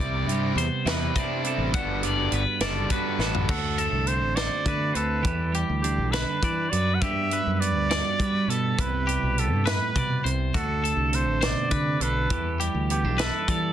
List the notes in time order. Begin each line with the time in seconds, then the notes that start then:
Already playing: G3 B3
0.00 C2 C3 G3 C4 E4 D5
0.26 G2 C3 G3 C4 E4, closed hi-hat
0.32 G3
0.56 E2 C5, closed hi-hat
0.60 B3
0.85 E2 C3 G3 C4 E4 B4, snare, closed hi-hat
0.91 B4
1.15 C3 G3 C4 E4 D5, kick, closed hi-hat
1.20 D4
1.44 C3 G3 C4 E4 A4, closed hi-hat
1.58 A1
1.74 G1 G2 D3 G3 B3 D4 F#5, kick, closed hi-hat
1.78 B3 F#4 A4
2.02 F#1 D3 G3 B3 D4 D5, closed hi-hat
2.32 G1 B3 B4, closed hi-hat
2.60 F#1 D3 G3 B3 D4 A4 D5, snare, closed hi-hat
2.90 D3 G3 B3 D4 F#4 B4, kick, closed hi-hat
3.19 A1 D3 G3 B3 D4 A4, snare
3.35 floor tom
3.49 D2 D3 F#4 A4, kick, crash
3.78 A3 A4, closed hi-hat
3.92 C2
4.07 C4 C5, closed hi-hat
4.22 A1
4.36 F#4 C5 D5, snare, closed hi-hat
4.66 D3 A3 B4, kick, closed hi-hat
4.93 D2 C4 A4 B4, closed hi-hat
5.22 E2 E3 G4, kick, closed hi-hat
5.52 G3 G4, closed hi-hat
5.69 D2
5.82 D4 G4, closed hi-hat
5.98 B1
6.12 D3 B4, snare, closed hi-hat
6.42 E3 D5, kick, closed hi-hat
6.70 F#2 F#3 B4 D5, closed hi-hat
6.94 F#5
7.01 G2 G3 B3 F#4 G4 B4 E5, kick, closed hi-hat
7.31 G3 B4, closed hi-hat
7.47 F#2
7.54 E5
7.60 B3 D5, closed hi-hat
7.75 D2
7.89 F#4 D5, snare, closed hi-hat
8.19 G3 B4, kick, closed hi-hat
8.48 B2 B3 A4, closed hi-hat
8.79 C2 C3 E4 B4, kick, closed hi-hat
9.07 G3 G4, closed hi-hat
9.23 B1
9.38 B3 A4, closed hi-hat
9.53 G2
9.66 A2 B4, snare, closed hi-hat
9.95 B2 C3 D5, kick, closed hi-hat
10.24 C2 C3 C5, closed hi-hat
10.54 D2 D3 F#4 A4, kick, closed hi-hat
10.83 A3 A4, closed hi-hat
10.97 C2
11.13 C4 C5, closed hi-hat
11.27 A1
11.41 B2 C5 D5, snare, closed hi-hat
11.71 C3 D3 B4, kick, closed hi-hat
12.00 B1 D3 A4 B4, closed hi-hat
12.30 E2 E3 G4, kick, closed hi-hat
12.60 G3 G4, closed hi-hat
12.74 D2
12.90 B3 G4, closed hi-hat
13.04 B1 D4
13.18 E4 A4 B4, snare, closed hi-hat
13.48 E3 G3 D5, kick, closed hi-hat